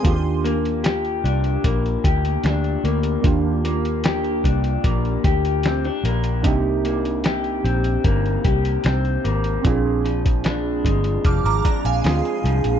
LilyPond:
<<
  \new Staff \with { instrumentName = "Synth bell" } { \time 4/4 \key ees \major \tempo 4 = 75 <aes'' c'''>16 r2. r8. | r1 | r1 | r2 <d''' f'''>16 <bes'' d'''>16 bes''16 <f'' aes''>4~ <f'' aes''>16 | }
  \new Staff \with { instrumentName = "Synth keys" } { \time 4/4 \key ees \major <bes d' f' g'>1 | <bes d' f' g'>1 | <bes d' ees' g'>1 | <c' d' f' aes'>2. <c' d' f' aes'>4 | }
  \new Staff \with { instrumentName = "Clean electric guitar" } { \time 4/4 \key ees \major r8 bes8 g'8 d'8 bes8 g'8 d'8 bes8~ | bes8 bes8 g'8 d'8 bes8 g'8 c'16 d'16 bes8 | c8 bes8 g'8 c'8 bes8 g'8 c'8 bes8 | bes,8 f8 d'8 aes8 f8 d'8 aes8 f8 | }
  \new Staff \with { instrumentName = "Fingered electric bass" } { \clef bass \time 4/4 \key ees \major ees,4. c,8 bes,,8 d,8 d,8 d,8 | ees,4. c,8 bes,,8 d,4 bes,,8 | c,4. bes,,8 g,,8 c,8 c,8 aes,,8 | bes,,4. g,,8 f,,16 aes,,16 r16 bes,,16 d,16 r16 c,16 bes,,16 | }
  \new DrumStaff \with { instrumentName = "Drums" } \drummode { \time 4/4 <hh bd>8 hh16 hh16 <hh sn>16 hh16 hh16 hh16 <hh bd>16 hh16 <hh bd>16 hh16 <hh sn>16 hh16 hh16 hh16 | <hh bd>8 hh16 hh16 <hh sn>16 hh16 <hh bd>16 hh16 <hh bd>16 hh16 <hh bd>16 hh16 <hh sn>16 hh16 hh16 hh16 | <hh bd>8 hh16 hh16 <hh sn>16 hh16 hh16 hh16 <hh bd>16 hh16 <hh bd>16 hh16 <hh sn>16 hh16 hh16 hh16 | <hh bd>8 hh16 <hh bd>16 <hh sn>8 <hh bd>16 hh16 <hh bd>16 <hh sn>16 <hh bd>16 hh16 <hh sn>16 hh16 hh16 hh16 | }
>>